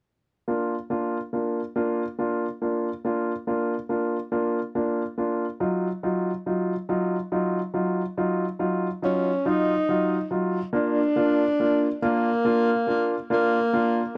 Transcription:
0.48 0.74 A#3 soft
0.48 0.74 D4 soft
0.48 0.74 F4 soft
0.90 1.16 A#3 soft
0.90 1.17 D4 soft
0.90 1.17 F4 medium
1.33 1.59 A#3 soft
1.33 1.59 D4 soft
1.33 1.60 F4 soft
1.76 2.02 A#3 medium
1.76 2.02 D4 soft
1.76 2.02 F4 medium
2.19 2.45 A#3 soft
2.19 2.45 D4 soft
2.19 2.45 F4 medium
2.62 2.88 A#3 soft
2.62 2.88 D4 soft
2.62 2.88 F4 soft
3.05 3.31 A#3 soft
3.05 3.31 D4 soft
3.05 3.31 F4 medium
3.47 3.73 A#3 soft
3.47 3.74 D4 soft
3.47 3.74 F4 medium
3.89 4.16 A#3 soft
3.89 4.16 D4 soft
3.89 4.16 F4 soft
4.32 4.58 A#3 medium
4.32 4.58 D4 soft
4.32 4.59 F4 medium
4.75 5.02 A#3 soft
4.75 5.02 D4 soft
4.75 5.02 F4 medium
5.18 5.44 A#3 soft
5.18 5.44 D4 soft
5.18 5.44 F4 soft
5.60 5.87 F#3 medium
5.60 5.87 D#4 soft
5.60 5.87 F4 medium
6.03 6.30 F#3 soft
6.03 6.30 D#4 soft
6.03 6.30 F4 medium
6.46 6.73 F#3 soft
6.46 6.73 D#4 soft
6.46 6.73 F4 soft
6.89 7.15 F#3 medium
6.89 7.15 D#4 soft
6.89 7.16 F4 medium
7.32 7.58 F#3 soft
7.32 7.58 D#4 soft
7.32 7.58 F4 medium
7.73 8.00 F#3 soft
7.73 8.01 D#4 soft
7.73 8.01 F4 medium
8.17 8.44 F#3 soft
8.17 8.44 D#4 soft
8.17 8.44 F4 medium
8.59 8.86 F#3 medium
8.59 8.86 D#4 soft
8.59 8.86 F4 medium
9.02 9.29 F#3 soft
9.02 9.49 C#4 medium
9.02 9.29 D#4 soft
9.02 9.29 F4 medium
9.45 9.72 F#3 medium
9.45 9.72 D#4 soft
9.45 10.32 D#4 medium
9.45 9.72 F4 medium
9.88 10.15 F#3 medium
9.88 10.15 D#4 soft
9.88 10.15 F4 medium
10.31 10.57 F#3 medium
10.31 10.57 D#4 soft
10.31 10.57 F4 medium
10.73 11.00 A#3 medium
10.73 11.00 D4 medium
10.73 11.99 D4 medium
10.73 11.00 F4 medium
11.16 11.43 A#3 soft
11.16 11.43 D4 medium
11.16 11.43 F4 medium
11.60 11.86 A#3 medium
11.60 11.86 D4 soft
11.60 11.86 F4 medium
12.02 12.28 A#3 medium
12.02 13.28 A#3 medium
12.02 12.28 D4 medium
12.02 12.29 F4 medium
12.45 12.71 A#3 medium
12.45 12.71 D4 soft
12.45 12.71 F4 medium
12.87 13.14 A#3 medium
12.87 13.14 D4 soft
12.87 13.14 F4 medium
13.30 13.56 A#3 medium
13.30 14.13 A#3 medium
13.30 13.57 D4 medium
13.30 13.57 F4 medium
13.73 13.99 A#3 medium
13.73 13.99 D4 soft
13.73 14.00 F4 medium

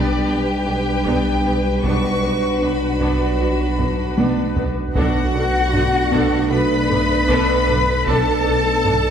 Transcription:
0.00 1.79 B1 medium
0.00 0.12 G3 medium
0.00 1.80 G3 soft
0.00 1.84 G3 medium
0.00 0.25 B3 medium
0.00 0.25 D4 medium
0.00 1.79 D4 medium
0.00 1.80 D4 medium
0.00 1.80 G4 medium
0.00 1.83 G4 medium
0.00 1.79 B4 medium
0.00 4.71 B4 medium
0.00 0.24 D5 medium
0.26 0.36 B1 soft
0.26 0.36 B2 soft
0.26 0.34 B3 soft
0.26 0.34 D4 soft
0.26 0.51 D4 medium
0.26 1.84 G5 medium
0.66 0.75 B1 soft
0.66 0.75 B2 soft
0.66 0.74 B3 soft
0.66 0.74 D4 soft
0.66 0.90 G4 soft
1.04 1.13 B1 soft
1.04 1.15 B2 medium
1.04 1.29 G3 medium
1.04 1.41 B3 medium
1.04 1.41 D4 soft
1.04 taiko medium
1.45 1.53 B1 soft
1.45 1.53 B2 soft
1.45 1.53 B3 soft
1.45 1.53 D4 soft
1.45 1.68 G4 medium
1.83 1.91 B1 soft
1.83 4.91 B1 medium
1.83 1.92 B2 soft
1.83 4.63 F#3 soft
1.83 4.95 B3 medium
1.83 2.20 B3 soft
1.83 2.07 B3 medium
1.83 4.59 D4 soft
1.83 4.91 D4 medium
1.83 2.20 D4 soft
1.83 4.75 F#4 soft
1.83 4.96 F#4 medium
1.83 4.92 B4 medium
1.83 2.62 C#6 medium
1.83 taiko medium
2.22 2.30 B1 soft
2.22 2.31 B2 soft
2.22 2.31 B3 soft
2.22 2.31 D4 soft
2.22 2.46 B4 soft
2.62 2.70 B1 soft
2.62 2.70 B2 soft
2.62 2.71 B3 soft
2.62 2.85 D4 medium
2.62 2.71 D4 soft
2.62 4.56 B5 medium
3.00 3.09 B1 soft
3.00 3.09 B2 soft
3.00 3.24 B3 medium
3.00 3.37 B3 soft
3.00 3.37 D4 soft
3.00 taiko medium
3.40 3.48 B1 soft
3.40 3.48 B2 soft
3.40 3.49 B3 soft
3.40 3.49 D4 soft
3.40 3.63 F#4 medium
3.79 3.87 B1 soft
3.79 3.87 B2 soft
3.79 3.87 B3 soft
3.79 3.88 D4 soft
3.79 4.02 B4 soft
3.79 taiko low-mid medium
4.17 4.26 B1 soft
4.17 4.27 B2 medium
4.17 4.54 B3 soft
4.17 4.41 B3 medium
4.17 4.54 D4 soft
4.17 taiko high medium
4.56 4.64 B1 soft
4.56 4.65 B2 soft
4.56 4.65 B3 soft
4.56 4.66 D4 soft
4.56 4.80 B4 medium
4.56 taiko low medium
4.94 5.02 B1 medium
4.94 8.03 B1 medium
4.94 8.02 A3 medium
4.94 8.03 B3 medium
4.94 5.20 B3 medium
4.94 8.03 D4 medium
4.94 5.32 D4 medium
4.94 6.47 F#4 medium
4.94 8.03 A4 medium
4.94 5.33 A4 medium
4.94 8.04 B4 medium
4.94 6.47 F#5 medium
4.94 6.48 F#5 medium
4.94 taiko medium
5.34 5.42 B1 soft
5.34 5.43 D4 soft
5.34 5.58 A4 medium
5.34 5.43 A4 soft
5.72 5.80 B1 soft
5.72 5.97 D4 medium
5.72 5.83 D4 soft
5.72 5.83 A4 soft
5.72 taiko low-mid medium
6.11 6.19 B1 medium
6.11 6.35 B3 medium
6.11 6.49 D4 medium
6.11 6.48 A4 medium
6.11 taiko medium
6.50 6.58 B1 medium
6.50 6.60 D4 medium
6.50 6.74 F#4 medium
6.50 6.59 A4 soft
6.50 8.04 B4 medium
6.50 8.03 B5 medium
6.50 8.07 B5 medium
6.89 6.97 B1 soft
6.89 6.99 D4 medium
6.89 7.13 A4 medium
6.89 6.99 A4 soft
6.89 taiko low-mid soft
7.28 7.36 B1 medium
7.28 7.52 B3 loud
7.28 7.66 D4 medium
7.28 7.66 A4 medium
7.28 taiko medium
7.67 7.76 B1 medium
7.67 7.77 D4 soft
7.67 7.91 A4 medium
7.67 7.76 A4 medium
7.67 taiko low-mid soft
8.06 9.10 B1 medium
8.06 8.14 B1 medium
8.06 9.10 A3 medium
8.06 8.30 B3 medium
8.06 9.10 B3 medium
8.06 9.10 D4 medium
8.06 8.43 D4 medium
8.06 8.43 A4 medium
8.06 9.10 A4 medium
8.06 9.10 B4 medium
8.06 9.10 A5 medium
8.06 taiko medium
8.46 8.54 B1 medium
8.46 8.54 D4 medium
8.46 8.69 A4 medium
8.46 8.54 A4 soft
8.84 8.93 B1 medium
8.84 9.08 D4 medium
8.84 8.93 D4 medium
8.84 8.93 A4 soft
8.84 taiko low-mid medium

